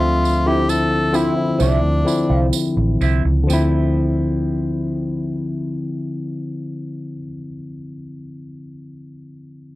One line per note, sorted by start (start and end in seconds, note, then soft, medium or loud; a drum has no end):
0.00 1.33 D2 loud
0.00 0.21 D3 medium
0.00 0.21 F3 medium
0.00 0.22 C4 medium
0.00 0.49 F4 loud
0.00 0.22 E5 loud
0.24 muted clean electric guitar stroke soft
0.24 tambourine soft
0.46 0.88 D3 medium
0.46 0.88 F3 medium
0.46 0.62 F3 soft
0.46 0.61 C4 medium
0.46 0.89 C4 medium
0.46 0.61 E4 medium
0.46 0.89 E4 medium
0.46 0.71 G4 medium
0.68 1.18 A4 loud
0.68 muted clean electric guitar stroke soft
0.68 tambourine medium
0.91 muted clean electric guitar stroke soft
1.12 1.70 D3 medium
1.12 1.70 F3 medium
1.12 1.33 F3 medium
1.12 1.71 C4 medium
1.12 1.33 C4 medium
1.12 1.34 E4 medium
1.12 1.71 E4 medium
1.12 1.61 E4 medium
1.12 tambourine soft
1.36 muted clean electric guitar stroke soft
1.58 1.80 C2 medium
1.58 1.79 F3 medium
1.58 1.79 C4 medium
1.58 2.50 D4 medium
1.58 1.79 E4 medium
1.58 tambourine medium
1.83 2.03 D2 medium
2.04 2.93 D3 medium
2.04 2.94 F3 medium
2.04 2.94 C4 medium
2.04 2.94 E4 medium
2.04 muted clean electric guitar stroke soft
2.04 tambourine soft
2.29 2.50 C2 medium
2.29 2.46 F3 soft
2.29 2.46 C4 medium
2.29 2.45 F4 medium
2.53 muted clean electric guitar stroke soft
2.53 tambourine medium
2.77 2.97 A1 medium
2.77 muted clean electric guitar stroke soft
3.01 3.22 C2 medium
3.01 3.21 F3 medium
3.01 3.22 C4 medium
3.01 3.22 E4 medium
3.01 tambourine soft
3.25 3.46 C#2 medium
3.25 muted clean electric guitar stroke soft
3.44 7.13 D3 medium
3.44 7.16 F3 medium
3.48 7.19 D2 medium
3.48 7.22 F3 medium
3.48 7.19 C4 medium
3.48 7.25 C4 medium
3.48 tambourine medium
3.53 7.23 E4 medium
3.53 7.27 E4 medium